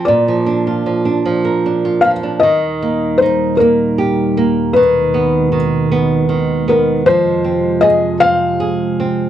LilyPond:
<<
  \new Staff \with { instrumentName = "Felt piano" } { \time 6/8 \key ees \major \tempo 4. = 52 d''2~ d''8 f''8 | ees''4 c''8 bes'4. | ces''4 r4. bes'8 | c''4 ees''8 f''4. | }
  \new Staff \with { instrumentName = "Nylon-string guitar" } { \time 6/8 \key ees \major bes,16 f16 d'16 f'16 f16 d'16 f16 bes'16 d'16 f'16 f16 d'16 | ees8 bes8 ees'8 bes8 g'8 bes8 | ees8 ces'8 ees8 ces'8 ees8 ces'8 | f8 c'8 aes'8 c'8 aes'8 c'8 | }
  \new Staff \with { instrumentName = "Ambient pad" } { \clef bass \time 6/8 \key ees \major << { r2. | g2. | aes2.~ | aes2. | } \\ { r2. | <ees, bes,>2. | <ces ees>2. | <f, c>2. | } >> }
>>